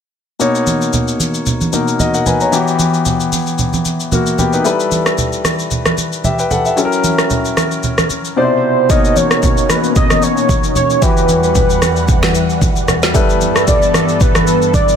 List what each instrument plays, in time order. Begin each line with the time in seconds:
0.39 grand piano B2 A#3 D#4 C#5, shaker
0.55 shaker
0.67 high conga, shaker
0.81 shaker
0.93 low conga, shaker
1.08 shaker
1.20 high conga, shaker
1.34 shaker
1.46 low conga, shaker
1.61 high conga, shaker
1.73 grand piano B2 A#3 D#4 A#4, high conga, shaker
1.88 shaker
2.00 grand piano F#4 D#5, high conga, low conga, shaker
2.14 grand piano A#4 F#5, shaker
2.26 grand piano B4 G#5, high conga, low conga, shaker
2.41 grand piano C#5 A#5, shaker
2.52 grand piano E3 B3 F#4 G4, shaker
2.68 shaker
2.79 high conga, shaker
2.94 shaker
3.05 low conga, shaker
3.20 shaker
3.32 high conga, shaker
3.47 shaker
3.58 low conga, shaker
3.73 high conga, shaker
3.85 high conga, shaker
4.00 shaker
4.12 grand piano A#3 F#4, high conga, low conga, shaker
4.26 shaker
4.38 grand piano B3 G4, high conga, low conga, shaker
4.53 grand piano D#4 B4, shaker
4.64 grand piano G3 E4 A4 B4, shaker
4.80 shaker
4.91 high conga, shaker
5.06 cross-stick, shaker
5.18 low conga, shaker
5.33 shaker
5.44 cross-stick, high conga, shaker
5.59 shaker
5.71 low conga, shaker
5.86 cross-stick, high conga, shaker
5.98 high conga, shaker
6.12 shaker
6.24 grand piano G4 E5, high conga, low conga, shaker
6.39 grand piano B4 G5, shaker
6.51 grand piano A4 F#5, high conga, low conga, shaker
6.65 grand piano G4 E5, shaker
6.76 grand piano F#3 C#4 E4 A4, shaker
6.85 grand piano A#4
6.92 shaker
7.04 high conga, shaker
7.18 cross-stick, shaker
7.30 low conga, shaker
7.45 shaker
7.57 cross-stick, high conga, shaker
7.71 shaker
7.83 low conga, shaker
7.98 cross-stick, high conga, shaker
8.10 high conga, shaker
8.25 shaker
8.36 grand piano B2 C3 D#4 D5, soft synth lead C5
8.43 grand piano E4
8.89 grand piano B2 A#3 D#4 C#5, analog synth pad B2 A#3 C#4 D#4, soft synth lead D#5, kick, shaker
9.05 shaker
9.16 soft synth lead C#5, high conga, shaker
9.31 cross-stick, shaker
9.43 kick, low conga, shaker
9.57 shaker
9.69 soft synth lead B4, cross-stick, high conga, shaker
9.84 shaker
9.96 soft synth lead D#5, kick, low conga, shaker
10.10 cross-stick, high conga, shaker
10.22 soft synth lead C#5, shaker
10.37 shaker
10.49 kick, high conga, low conga, shaker
10.64 shaker
10.75 soft synth lead C#5, high conga, low conga, shaker
10.90 shaker
11.01 analog synth pad E2 E3 G3 F#5, grand piano E3 E4 F#4 G4, soft synth lead B4, kick, shaker
11.17 shaker
11.29 high conga, shaker
11.43 soft synth lead B4, shaker
11.55 kick, low conga, shaker
11.70 shaker
11.82 cross-stick, high conga, shaker
11.96 shaker
12.08 kick, low conga, shaker
12.23 cross-stick, snare, high conga, shaker
12.35 shaker
12.50 shaker
12.61 kick, high conga, low conga, shaker
12.76 shaker
12.88 cross-stick, high conga, low conga, shaker
13.02 snare, shaker
13.14 analog synth pad G2 E3 B3 A4, grand piano G3 E4 A4 B4, kick, shaker
13.30 shaker
13.41 high conga, shaker
13.56 cross-stick, shaker
13.67 soft synth lead D5, kick, low conga, shaker
13.82 shaker
13.94 cross-stick, high conga, shaker
14.09 shaker
14.20 soft synth lead B4, kick, low conga, shaker
14.35 cross-stick, high conga, shaker
14.47 shaker
14.62 shaker
14.74 soft synth lead D5, kick, high conga, low conga, shaker
14.88 shaker